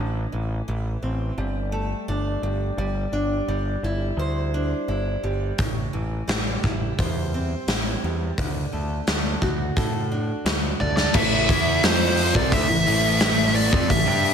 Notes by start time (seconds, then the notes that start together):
Already playing: A1 A2
0.32 A1 E3
0.68 A1 E3
1.03 A1 C4
1.38 G1 G3
1.72 A3
2.08 G1 D4
2.42 G1 G3
2.77 G1 G3
3.12 G1 D4
3.48 G1 G3
3.83 G1 E4
4.17 D2 C5
4.54 D4
4.88 G1 E4
5.23 G1 G3
5.58 A1 A2, kick, open hi-hat
5.93 A1 E3
6.28 A1 G3, snare, open hi-hat
6.63 A1 E4, kick
6.98 E2 C5, kick, open hi-hat
7.34 C4
7.68 A1 E4, snare, open hi-hat
8.03 E2 G3
8.38 D2 D3, kick, open hi-hat
8.73 D2 A3
9.07 D2 A3, snare, open hi-hat
9.42 D2 F#4, kick
9.77 A2 A4, kick, open hi-hat
10.12 D4
10.45 D2 F#4, snare, open hi-hat
10.80 D2 A3 D5, kick
10.97 D5, snare
11.14 A1 A2 E3 A3 E5, kick, crash
11.49 E2 E3 B3 E4, kick, open hi-hat
11.83 F2 F3 C4 F4 C5, snare, open hi-hat
12.17 open hi-hat
12.35 C2 C3 G3 D5, kick
12.52 D2 D3 A3 E5, kick, open hi-hat
12.69 A1 A2 E3
12.86 A1 A2 E3 A3, open hi-hat
13.20 snare, open hi-hat
13.55 D5, open hi-hat
13.72 F2 F3 C4 D5, kick
13.89 A1 A2 E3 E5, kick, open hi-hat
14.06 G2 G3 D4 G4
14.25 open hi-hat